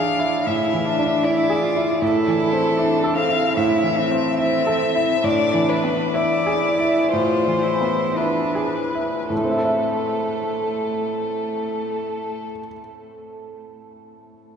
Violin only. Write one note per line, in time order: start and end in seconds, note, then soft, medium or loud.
0.00 0.48 F5 medium
0.47 1.25 E5 soft
1.24 2.03 D5 medium
2.01 3.16 A4 medium
3.17 3.59 F5 medium
3.57 4.39 E5 medium
4.39 5.26 E5 medium
5.24 5.71 D5 medium
5.69 6.16 B4 medium
6.15 7.12 D5 medium
7.12 8.18 C5 medium
8.17 9.30 B4 soft
9.30 12.45 A4 soft